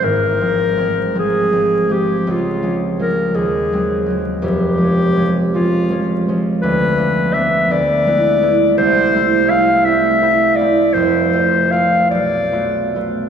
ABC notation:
X:1
M:6/8
L:1/8
Q:3/8=55
K:Dblyd
V:1 name="Clarinet"
B3 A2 G | F2 B A2 z | G3 F2 z | [K:Am] B2 e d3 |
c2 f e2 d | c2 f d2 z |]
V:2 name="Harp"
[A,,,A,,C] [F,A,C] [F,A,C] [F,A,C] [F,A,C] [F,A,C] | D,, [F,A,D] [F,A,D] E,, [_G,A,C] [G,A,C] | [F,,,F,,] [F,A,D] [F,A,D] [F,A,D] [F,A,D] [F,A,D] | [K:Am] D,, [F,B,D] [F,B,D] D,, [^G,B,E] [G,B,E] |
C,, [A,CE] [A,CE] [A,CE] [A,CE] [A,CE] | [F,,,F,,] [A,CF] [A,CF] B,,, [A,B,F] [A,B,F] |]